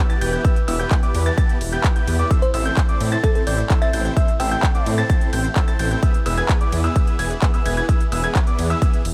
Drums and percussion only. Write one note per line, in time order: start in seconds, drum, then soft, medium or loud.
0.10 closed hi-hat soft
0.21 open hi-hat loud
0.21 ride medium
0.33 closed hi-hat soft
0.45 kick loud
0.45 closed hi-hat medium
0.56 closed hi-hat soft
0.68 open hi-hat loud
0.68 ride medium
0.80 closed hi-hat soft
0.91 kick loud
0.91 clap loud
0.91 closed hi-hat medium
1.03 closed hi-hat soft
1.15 open hi-hat loud
1.15 ride medium
1.26 closed hi-hat soft
1.38 kick loud
1.38 closed hi-hat medium
1.49 closed hi-hat soft
1.61 open hi-hat loud
1.61 ride medium
1.73 closed hi-hat soft
1.84 kick loud
1.84 clap loud
1.84 closed hi-hat medium
1.96 closed hi-hat soft
2.07 open hi-hat loud
2.07 ride medium
2.19 closed hi-hat soft
2.31 kick loud
2.31 closed hi-hat medium
2.42 closed hi-hat soft
2.54 open hi-hat loud
2.54 ride medium
2.66 closed hi-hat soft
2.77 kick loud
2.77 clap loud
2.77 closed hi-hat medium
2.89 closed hi-hat soft
3.00 open hi-hat medium
3.00 ride medium
3.12 closed hi-hat soft
3.24 kick loud
3.24 closed hi-hat medium
3.35 closed hi-hat soft
3.47 open hi-hat loud
3.47 ride medium
3.58 closed hi-hat soft
3.70 kick loud
3.70 clap loud
3.70 closed hi-hat medium
3.82 closed hi-hat soft
3.93 open hi-hat medium
3.93 ride medium
4.05 closed hi-hat soft
4.17 kick loud
4.17 closed hi-hat medium
4.28 closed hi-hat soft
4.40 open hi-hat loud
4.40 ride medium
4.51 closed hi-hat soft
4.63 kick loud
4.63 clap loud
4.63 closed hi-hat medium
4.75 closed hi-hat soft
4.86 open hi-hat medium
4.86 ride medium
4.98 closed hi-hat soft
5.10 kick loud
5.10 closed hi-hat medium
5.21 closed hi-hat soft
5.33 open hi-hat loud
5.33 ride medium
5.44 closed hi-hat soft
5.56 kick loud
5.56 clap loud
5.56 closed hi-hat medium
5.68 closed hi-hat soft
5.79 open hi-hat medium
5.79 ride medium
5.91 closed hi-hat soft
6.03 kick loud
6.03 closed hi-hat medium
6.14 closed hi-hat soft
6.26 open hi-hat loud
6.26 ride medium
6.38 closed hi-hat soft
6.49 kick loud
6.49 clap loud
6.49 closed hi-hat medium
6.61 closed hi-hat soft
6.72 open hi-hat medium
6.72 ride medium
6.84 closed hi-hat soft
6.96 kick loud
6.96 closed hi-hat medium
7.07 closed hi-hat soft
7.19 open hi-hat loud
7.19 ride medium
7.31 closed hi-hat soft
7.42 kick loud
7.42 clap loud
7.42 closed hi-hat medium
7.54 closed hi-hat soft
7.66 open hi-hat medium
7.66 ride medium
7.77 closed hi-hat soft
7.89 kick loud
7.89 closed hi-hat medium
8.00 closed hi-hat soft
8.12 open hi-hat loud
8.12 ride medium
8.24 closed hi-hat soft
8.35 kick loud
8.35 clap loud
8.35 closed hi-hat medium
8.47 closed hi-hat soft
8.59 open hi-hat medium
8.59 ride medium
8.70 closed hi-hat soft
8.82 kick loud
8.82 closed hi-hat medium
8.93 closed hi-hat soft
9.05 open hi-hat loud
9.05 ride medium